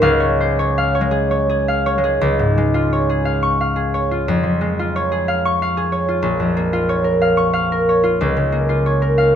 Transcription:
0, 0, Header, 1, 2, 480
1, 0, Start_track
1, 0, Key_signature, -5, "major"
1, 0, Tempo, 744417
1, 8, Time_signature, 3, 2, 24, 8
1, 1447, Tempo, 683371
1, 1927, Tempo, 671141
1, 3847, Tempo, 649351
1, 6612, End_track
2, 0, Start_track
2, 0, Title_t, "Harp"
2, 0, Program_c, 0, 46
2, 0, Note_on_c, 0, 56, 56
2, 10, Note_on_c, 0, 37, 82
2, 16, Note_on_c, 0, 77, 85
2, 129, Note_on_c, 0, 73, 57
2, 261, Note_on_c, 0, 72, 58
2, 373, Note_off_c, 0, 73, 0
2, 381, Note_on_c, 0, 73, 65
2, 466, Note_off_c, 0, 72, 0
2, 494, Note_off_c, 0, 77, 0
2, 502, Note_on_c, 0, 77, 68
2, 604, Note_off_c, 0, 73, 0
2, 611, Note_on_c, 0, 73, 62
2, 643, Note_off_c, 0, 56, 0
2, 651, Note_on_c, 0, 56, 62
2, 716, Note_on_c, 0, 68, 62
2, 836, Note_off_c, 0, 73, 0
2, 844, Note_on_c, 0, 73, 58
2, 956, Note_off_c, 0, 68, 0
2, 964, Note_on_c, 0, 68, 62
2, 1077, Note_off_c, 0, 77, 0
2, 1085, Note_on_c, 0, 77, 62
2, 1192, Note_off_c, 0, 73, 0
2, 1200, Note_on_c, 0, 73, 69
2, 1268, Note_off_c, 0, 56, 0
2, 1275, Note_on_c, 0, 56, 59
2, 1306, Note_off_c, 0, 68, 0
2, 1314, Note_on_c, 0, 68, 65
2, 1420, Note_off_c, 0, 37, 0
2, 1427, Note_on_c, 0, 37, 81
2, 1550, Note_on_c, 0, 44, 54
2, 1671, Note_off_c, 0, 56, 0
2, 1680, Note_on_c, 0, 56, 65
2, 1797, Note_on_c, 0, 65, 64
2, 1918, Note_off_c, 0, 73, 0
2, 1926, Note_on_c, 0, 73, 62
2, 2038, Note_off_c, 0, 68, 0
2, 2047, Note_on_c, 0, 68, 64
2, 2151, Note_off_c, 0, 77, 0
2, 2159, Note_on_c, 0, 77, 63
2, 2284, Note_on_c, 0, 85, 73
2, 2404, Note_off_c, 0, 77, 0
2, 2413, Note_on_c, 0, 77, 60
2, 2512, Note_off_c, 0, 68, 0
2, 2521, Note_on_c, 0, 68, 54
2, 2644, Note_off_c, 0, 73, 0
2, 2652, Note_on_c, 0, 73, 59
2, 2766, Note_off_c, 0, 65, 0
2, 2775, Note_on_c, 0, 65, 53
2, 2891, Note_off_c, 0, 37, 0
2, 2893, Note_off_c, 0, 44, 0
2, 2895, Note_on_c, 0, 41, 74
2, 3004, Note_on_c, 0, 53, 50
2, 3121, Note_off_c, 0, 56, 0
2, 3130, Note_on_c, 0, 56, 59
2, 3252, Note_off_c, 0, 65, 0
2, 3261, Note_on_c, 0, 65, 60
2, 3371, Note_off_c, 0, 73, 0
2, 3379, Note_on_c, 0, 73, 63
2, 3484, Note_off_c, 0, 68, 0
2, 3493, Note_on_c, 0, 68, 57
2, 3602, Note_off_c, 0, 77, 0
2, 3610, Note_on_c, 0, 77, 65
2, 3725, Note_off_c, 0, 85, 0
2, 3734, Note_on_c, 0, 85, 75
2, 3844, Note_off_c, 0, 77, 0
2, 3853, Note_on_c, 0, 77, 61
2, 3956, Note_off_c, 0, 68, 0
2, 3965, Note_on_c, 0, 68, 59
2, 4067, Note_off_c, 0, 73, 0
2, 4076, Note_on_c, 0, 73, 56
2, 4188, Note_off_c, 0, 65, 0
2, 4196, Note_on_c, 0, 65, 57
2, 4300, Note_on_c, 0, 34, 71
2, 4341, Note_off_c, 0, 68, 0
2, 4347, Note_off_c, 0, 56, 0
2, 4349, Note_off_c, 0, 41, 0
2, 4427, Note_on_c, 0, 41, 50
2, 4553, Note_on_c, 0, 58, 60
2, 4664, Note_off_c, 0, 65, 0
2, 4673, Note_on_c, 0, 65, 58
2, 4783, Note_off_c, 0, 73, 0
2, 4792, Note_on_c, 0, 73, 61
2, 4904, Note_on_c, 0, 70, 58
2, 5023, Note_off_c, 0, 77, 0
2, 5032, Note_on_c, 0, 77, 62
2, 5139, Note_off_c, 0, 85, 0
2, 5147, Note_on_c, 0, 85, 72
2, 5259, Note_off_c, 0, 77, 0
2, 5268, Note_on_c, 0, 77, 62
2, 5396, Note_off_c, 0, 70, 0
2, 5405, Note_on_c, 0, 70, 55
2, 5522, Note_off_c, 0, 73, 0
2, 5530, Note_on_c, 0, 73, 60
2, 5629, Note_off_c, 0, 65, 0
2, 5638, Note_on_c, 0, 65, 56
2, 5765, Note_on_c, 0, 37, 74
2, 5771, Note_off_c, 0, 34, 0
2, 5775, Note_off_c, 0, 41, 0
2, 5858, Note_off_c, 0, 53, 0
2, 5883, Note_on_c, 0, 49, 57
2, 5990, Note_off_c, 0, 58, 0
2, 5999, Note_on_c, 0, 58, 58
2, 6113, Note_off_c, 0, 65, 0
2, 6122, Note_on_c, 0, 65, 62
2, 6239, Note_off_c, 0, 73, 0
2, 6248, Note_on_c, 0, 73, 63
2, 6356, Note_off_c, 0, 70, 0
2, 6365, Note_on_c, 0, 70, 58
2, 6474, Note_off_c, 0, 77, 0
2, 6483, Note_on_c, 0, 77, 65
2, 6597, Note_off_c, 0, 85, 0
2, 6612, Note_off_c, 0, 37, 0
2, 6612, Note_off_c, 0, 49, 0
2, 6612, Note_off_c, 0, 58, 0
2, 6612, Note_off_c, 0, 65, 0
2, 6612, Note_off_c, 0, 70, 0
2, 6612, Note_off_c, 0, 73, 0
2, 6612, Note_off_c, 0, 77, 0
2, 6612, End_track
0, 0, End_of_file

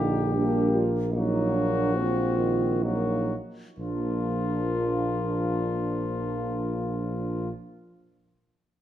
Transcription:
0, 0, Header, 1, 6, 480
1, 0, Start_track
1, 0, Key_signature, -2, "major"
1, 0, Tempo, 768246
1, 705, Time_signature, 3, 2, 24, 8
1, 705, Tempo, 820793
1, 1185, Tempo, 883652
1, 1665, Tempo, 955414
1, 2145, Tempo, 903614
1, 3585, Tempo, 930233
1, 4780, End_track
2, 0, Start_track
2, 0, Title_t, "Flugelhorn"
2, 0, Program_c, 0, 56
2, 0, Note_on_c, 0, 67, 48
2, 497, Note_off_c, 0, 67, 0
2, 707, Note_on_c, 0, 66, 47
2, 1645, Note_off_c, 0, 66, 0
2, 1668, Note_on_c, 0, 66, 36
2, 1933, Note_off_c, 0, 66, 0
2, 2145, Note_on_c, 0, 65, 38
2, 4104, Note_off_c, 0, 65, 0
2, 4780, End_track
3, 0, Start_track
3, 0, Title_t, "French horn section"
3, 0, Program_c, 1, 60
3, 0, Note_on_c, 1, 63, 49
3, 217, Note_off_c, 1, 63, 0
3, 217, Note_on_c, 1, 62, 52
3, 458, Note_on_c, 1, 65, 51
3, 460, Note_off_c, 1, 62, 0
3, 697, Note_on_c, 1, 63, 45
3, 698, Note_off_c, 1, 65, 0
3, 933, Note_on_c, 1, 62, 46
3, 935, Note_off_c, 1, 63, 0
3, 1178, Note_on_c, 1, 65, 44
3, 1183, Note_off_c, 1, 62, 0
3, 1662, Note_off_c, 1, 65, 0
3, 1662, Note_on_c, 1, 63, 39
3, 1935, Note_off_c, 1, 63, 0
3, 2141, Note_on_c, 1, 62, 34
3, 4100, Note_off_c, 1, 62, 0
3, 4780, End_track
4, 0, Start_track
4, 0, Title_t, "Trombone section"
4, 0, Program_c, 2, 61
4, 0, Note_on_c, 2, 58, 46
4, 119, Note_off_c, 2, 58, 0
4, 225, Note_on_c, 2, 58, 46
4, 697, Note_off_c, 2, 58, 0
4, 706, Note_on_c, 2, 58, 45
4, 1176, Note_off_c, 2, 58, 0
4, 1189, Note_on_c, 2, 60, 42
4, 1665, Note_on_c, 2, 58, 35
4, 1667, Note_off_c, 2, 60, 0
4, 1936, Note_off_c, 2, 58, 0
4, 2141, Note_on_c, 2, 58, 36
4, 4100, Note_off_c, 2, 58, 0
4, 4780, End_track
5, 0, Start_track
5, 0, Title_t, "Trombone"
5, 0, Program_c, 3, 57
5, 0, Note_on_c, 3, 50, 41
5, 217, Note_on_c, 3, 55, 44
5, 226, Note_off_c, 3, 50, 0
5, 533, Note_off_c, 3, 55, 0
5, 705, Note_on_c, 3, 54, 45
5, 1185, Note_on_c, 3, 53, 42
5, 1193, Note_off_c, 3, 54, 0
5, 1418, Note_on_c, 3, 51, 43
5, 1426, Note_off_c, 3, 53, 0
5, 1663, Note_on_c, 3, 54, 37
5, 1671, Note_off_c, 3, 51, 0
5, 1936, Note_off_c, 3, 54, 0
5, 2143, Note_on_c, 3, 53, 34
5, 4102, Note_off_c, 3, 53, 0
5, 4780, End_track
6, 0, Start_track
6, 0, Title_t, "Tuba"
6, 0, Program_c, 4, 58
6, 0, Note_on_c, 4, 34, 49
6, 1919, Note_off_c, 4, 34, 0
6, 2144, Note_on_c, 4, 34, 35
6, 4103, Note_off_c, 4, 34, 0
6, 4780, End_track
0, 0, End_of_file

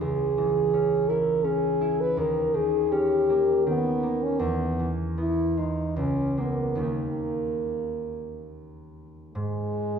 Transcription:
0, 0, Header, 1, 3, 480
1, 0, Start_track
1, 0, Tempo, 720288
1, 11, Time_signature, 3, 2, 24, 8
1, 1450, Tempo, 739827
1, 2890, Tempo, 789474
1, 3850, Tempo, 841515
1, 6142, End_track
2, 0, Start_track
2, 0, Title_t, "French horn"
2, 0, Program_c, 0, 60
2, 12, Note_on_c, 0, 68, 68
2, 728, Note_on_c, 0, 70, 64
2, 738, Note_off_c, 0, 68, 0
2, 970, Note_on_c, 0, 68, 73
2, 980, Note_off_c, 0, 70, 0
2, 1337, Note_on_c, 0, 71, 66
2, 1347, Note_off_c, 0, 68, 0
2, 1458, Note_on_c, 0, 70, 63
2, 1468, Note_off_c, 0, 71, 0
2, 1694, Note_on_c, 0, 68, 74
2, 1704, Note_off_c, 0, 70, 0
2, 1929, Note_on_c, 0, 67, 73
2, 1939, Note_off_c, 0, 68, 0
2, 2410, Note_off_c, 0, 67, 0
2, 2420, Note_on_c, 0, 59, 71
2, 2787, Note_on_c, 0, 61, 60
2, 2796, Note_off_c, 0, 59, 0
2, 2890, Note_on_c, 0, 59, 71
2, 2899, Note_off_c, 0, 61, 0
2, 3198, Note_off_c, 0, 59, 0
2, 3373, Note_on_c, 0, 64, 64
2, 3611, Note_on_c, 0, 63, 53
2, 3620, Note_off_c, 0, 64, 0
2, 3852, Note_off_c, 0, 63, 0
2, 3854, Note_on_c, 0, 61, 56
2, 4090, Note_on_c, 0, 59, 47
2, 4098, Note_off_c, 0, 61, 0
2, 4331, Note_on_c, 0, 58, 50
2, 4339, Note_off_c, 0, 59, 0
2, 5301, Note_off_c, 0, 58, 0
2, 5772, Note_on_c, 0, 56, 69
2, 6142, Note_off_c, 0, 56, 0
2, 6142, End_track
3, 0, Start_track
3, 0, Title_t, "Harp"
3, 0, Program_c, 1, 46
3, 0, Note_on_c, 1, 56, 39
3, 0, Note_on_c, 1, 61, 35
3, 6, Note_on_c, 1, 37, 42
3, 251, Note_on_c, 1, 52, 41
3, 483, Note_off_c, 1, 61, 0
3, 491, Note_on_c, 1, 61, 40
3, 729, Note_on_c, 1, 64, 37
3, 953, Note_off_c, 1, 61, 0
3, 961, Note_on_c, 1, 61, 42
3, 1200, Note_off_c, 1, 64, 0
3, 1208, Note_on_c, 1, 64, 42
3, 1445, Note_on_c, 1, 39, 48
3, 1467, Note_off_c, 1, 37, 0
3, 1468, Note_off_c, 1, 52, 0
3, 1470, Note_off_c, 1, 64, 0
3, 1472, Note_off_c, 1, 56, 0
3, 1686, Note_on_c, 1, 51, 38
3, 1924, Note_off_c, 1, 61, 0
3, 1932, Note_on_c, 1, 61, 45
3, 2175, Note_on_c, 1, 58, 37
3, 2408, Note_off_c, 1, 51, 0
3, 2416, Note_on_c, 1, 51, 37
3, 2645, Note_off_c, 1, 58, 0
3, 2653, Note_on_c, 1, 58, 37
3, 2889, Note_on_c, 1, 40, 44
3, 2907, Note_off_c, 1, 39, 0
3, 2909, Note_off_c, 1, 61, 0
3, 2911, Note_off_c, 1, 51, 0
3, 2911, Note_off_c, 1, 58, 0
3, 3132, Note_on_c, 1, 52, 36
3, 3365, Note_on_c, 1, 59, 39
3, 3605, Note_on_c, 1, 56, 32
3, 3843, Note_on_c, 1, 37, 42
3, 3868, Note_off_c, 1, 40, 0
3, 3868, Note_off_c, 1, 59, 0
3, 3871, Note_off_c, 1, 52, 0
3, 4071, Note_off_c, 1, 56, 0
3, 4077, Note_on_c, 1, 56, 29
3, 4081, Note_on_c, 1, 58, 28
3, 4294, Note_on_c, 1, 39, 32
3, 4302, Note_on_c, 1, 51, 25
3, 4306, Note_on_c, 1, 55, 26
3, 4307, Note_off_c, 1, 58, 0
3, 4314, Note_on_c, 1, 58, 28
3, 4348, Note_off_c, 1, 37, 0
3, 4348, Note_off_c, 1, 56, 0
3, 5776, Note_on_c, 1, 44, 41
3, 5780, Note_off_c, 1, 39, 0
3, 5784, Note_off_c, 1, 51, 0
3, 5786, Note_off_c, 1, 55, 0
3, 5790, Note_off_c, 1, 58, 0
3, 6142, Note_off_c, 1, 44, 0
3, 6142, End_track
0, 0, End_of_file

